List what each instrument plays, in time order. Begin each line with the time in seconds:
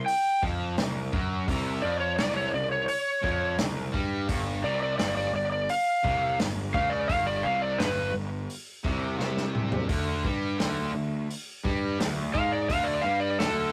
0.06 electric slide guitar G5, open hi-hat
0.43 picked electric bass F2, distorted electric guitar F3, kick
0.78 picked electric bass C2, distorted electric guitar C3, snare, open hi-hat
1.12 picked electric bass F#2, distorted electric guitar F#3, kick
1.48 picked electric bass C2, distorted electric guitar C3, kick, open hi-hat
1.82 picked electric bass F2, distorted electric guitar F3, electric slide guitar D5
2.00 electric slide guitar C#5
2.18 picked electric bass C2, distorted electric guitar C3, electric slide guitar D5, snare, open hi-hat
2.37 electric slide guitar C#5
2.54 picked electric bass C2, distorted electric guitar C#3, electric slide guitar D5
2.72 electric slide guitar C#5
2.88 electric slide guitar C#5, open hi-hat
3.22 picked electric bass F2, distorted electric guitar F3, kick
3.58 picked electric bass C2, distorted electric guitar C#3, snare, open hi-hat
3.92 picked electric bass G2, distorted electric guitar G3, kick
4.27 picked electric bass G1, distorted electric guitar G2, kick, open hi-hat
4.63 picked electric bass C2, distorted electric guitar C3, electric slide guitar D5
4.83 electric slide guitar D5
4.98 picked electric bass G1, distorted electric guitar G2, electric slide guitar D5, snare, open hi-hat
5.17 electric slide guitar D5
5.33 picked electric bass G1, distorted electric guitar G2, electric slide guitar D5
5.52 electric slide guitar D5
5.69 electric slide guitar F5, open hi-hat
6.03 picked electric bass C2, distorted electric guitar C3, kick
6.39 picked electric bass G1, distorted electric guitar G2, snare, open hi-hat
6.73 picked electric bass C#2, distorted electric guitar C#3, electric slide guitar F5, kick
6.90 electric slide guitar D5
7.08 picked electric bass G1, distorted electric guitar G2, electric slide guitar F5, kick, open hi-hat
7.27 electric slide guitar D5
7.43 picked electric bass C2, distorted electric guitar C3, electric slide guitar F5
7.62 electric slide guitar D5
7.79 picked electric bass G1, distorted electric guitar G2, electric slide guitar B4, snare, open hi-hat
8.14 picked electric bass G1, distorted electric guitar G2
8.50 open hi-hat
8.84 picked electric bass C2, distorted electric guitar C3, kick
9.18 picked electric bass C2, distorted electric guitar C3, snare
9.37 snare
9.55 mid tom
9.72 floor tom
9.89 picked electric bass D2, distorted electric guitar D3, kick, open hi-hat
10.24 picked electric bass G2, distorted electric guitar G3, kick
10.58 picked electric bass D2, distorted electric guitar D3, snare, open hi-hat
10.93 picked electric bass D2, distorted electric guitar D3
11.30 open hi-hat
11.64 picked electric bass G2, distorted electric guitar G3, kick
11.99 picked electric bass D2, distorted electric guitar D3, snare, open hi-hat
12.33 picked electric bass G#2, distorted electric guitar G#3, electric slide guitar F5, kick
12.52 electric slide guitar D5
12.69 picked electric bass D2, distorted electric guitar D3, electric slide guitar F5, kick, open hi-hat
12.84 electric slide guitar D5
13.02 picked electric bass G2, distorted electric guitar G3, electric slide guitar F5
13.20 electric slide guitar D5
13.39 picked electric bass D2, distorted electric guitar D3, electric slide guitar A4, snare, open hi-hat